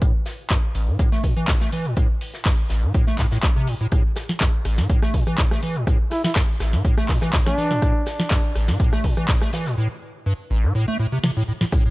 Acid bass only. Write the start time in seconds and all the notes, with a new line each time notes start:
0.02 A2
0.50 G2
0.75 A1
0.88 A2
0.99 A2
1.12 A3
1.24 A2
1.37 E3
1.48 A2
1.61 A3
1.72 E3
1.85 A2
1.97 A2
2.46 G2
2.70 A1
2.83 A2
2.94 A2
3.07 A3
3.19 A2
3.32 A2
3.43 A3
3.56 C3
3.68 A2
3.81 A2
3.92 A2
4.41 G2
4.65 A1
4.78 A2
4.89 A2
5.02 A3
5.14 A2
5.27 E3
5.38 A2
5.51 A3
5.63 E3
5.76 A2
5.87 A2
6.36 G2
6.60 A1
6.73 A2
6.85 A2
6.97 A3
7.09 A2
7.22 E3
7.33 A2
7.46 A3
7.58 E3
7.71 A2
7.82 A2
8.31 G2
8.55 A1
8.68 A2
8.80 A2
8.93 A3
9.04 A2
9.17 E3
9.29 A2
9.41 A3
9.53 E3
9.66 A2
9.77 A2
10.26 G2
10.50 A1
10.63 A2
10.75 A2
10.88 A3
10.99 A2
11.12 C3
11.24 C3
11.37 A2
11.48 A2
11.61 A2
11.72 A2
11.85 A2